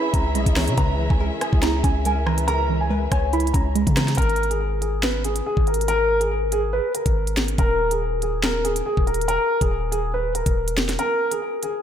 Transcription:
Already playing: C#3 E3 G#3 C#4 E4 G#4 B4 E5 B5
0.14 C#2 C#4 A#5, kick, closed hi-hat
0.35 B1 G#3 D#5, closed hi-hat
0.46 C#2, kick, closed hi-hat
0.56 E3 C#5, cross-stick, snare, open hi-hat
0.68 C#3, closed hi-hat
0.78 C#2 C#3 B4 A#5, kick, closed hi-hat
0.99 E3
1.10 C#2 G#5, kick
1.20 G#3 A#4
1.41 G#4 G#5, cross-stick, closed hi-hat
1.53 C#2, kick
1.62 E4 A#5, snare, closed hi-hat
1.84 C#2 C#4 G#5, kick, closed hi-hat
2.05 G#3 A#4 G#5, closed hi-hat
2.26 E3 B4 A#5, cross-stick
2.38 closed hi-hat
2.48 C#3 A#4 A#5, closed hi-hat
2.69 E3
2.81 G#5
2.90 G#3 B4
3.12 C#2 C#5 G#5, kick, cross-stick, closed hi-hat
3.33 E4 B5, closed hi-hat
3.40 closed hi-hat
3.47 closed hi-hat
3.54 C#2 C#4 A#5, kick, closed hi-hat
3.75 G#3, closed hi-hat
3.87 C#3, kick, closed hi-hat
3.97 E3, cross-stick, snare, closed hi-hat
4.08 snare, closed hi-hat
4.15 G#1 A#4, kick, closed hi-hat
4.18 closed hi-hat
4.29 closed hi-hat
4.36 closed hi-hat
4.43 closed hi-hat
4.50 G#4, closed hi-hat
4.81 G#4, closed hi-hat
5.03 B4, snare
5.24 G#4, closed hi-hat
5.36 closed hi-hat
5.46 G#4
5.57 G#1, kick
5.67 A#4, closed hi-hat
5.74 closed hi-hat
5.81 closed hi-hat
5.88 A#4, closed hi-hat
6.20 G#4, closed hi-hat
6.52 G#4, closed hi-hat
6.73 B4
6.95 A#4, closed hi-hat
7.06 G#1, kick, closed hi-hat
7.27 closed hi-hat
7.37 snare
7.48 closed hi-hat
7.58 D#1 A#4, kick, closed hi-hat
7.91 G#4, closed hi-hat
8.22 G#4, closed hi-hat
8.43 A#4, snare
8.64 G#4, closed hi-hat
8.76 closed hi-hat
8.86 G#4
8.97 D#1, kick
9.07 A#4, closed hi-hat
9.14 closed hi-hat
9.21 closed hi-hat
9.28 A#4, closed hi-hat
9.61 D#1 G#4, kick, closed hi-hat
9.92 G#4, closed hi-hat
10.14 B4
10.35 A#4, closed hi-hat
10.46 D#1, kick, closed hi-hat
10.68 E1, closed hi-hat
10.78 snare
10.89 snare, closed hi-hat
10.99 A#4, closed hi-hat
11.31 G#4, closed hi-hat
11.63 G#4, closed hi-hat

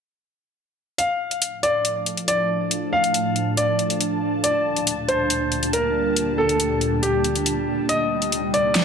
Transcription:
0.98 A2 F3 D4 A4 F5 A5, closed hi-hat
1.29 A5, closed hi-hat
1.42 closed hi-hat
1.51 F5
1.63 D5, closed hi-hat
1.85 closed hi-hat
2.06 closed hi-hat
2.17 closed hi-hat
2.28 D5, closed hi-hat
2.71 closed hi-hat
2.93 F5
3.04 closed hi-hat
3.14 closed hi-hat
3.36 closed hi-hat
3.57 D5, closed hi-hat
3.79 closed hi-hat
3.90 closed hi-hat
4.01 closed hi-hat
4.44 D2 A#2 G3 D5, closed hi-hat
4.69 A#3
4.76 G5, closed hi-hat
4.87 closed hi-hat
5.08 C5, closed hi-hat
5.30 closed hi-hat
5.52 closed hi-hat
5.63 closed hi-hat
5.73 A#4, closed hi-hat
6.16 closed hi-hat
6.38 A4
6.49 closed hi-hat
6.60 closed hi-hat
6.81 closed hi-hat
7.03 G4, closed hi-hat
7.24 closed hi-hat
7.36 closed hi-hat
7.46 closed hi-hat
7.89 C3 D#4 C5 D#5, closed hi-hat
8.11 C5
8.18 C6, closed hi-hat
8.32 closed hi-hat
8.54 D5, closed hi-hat
8.75 snare, closed hi-hat

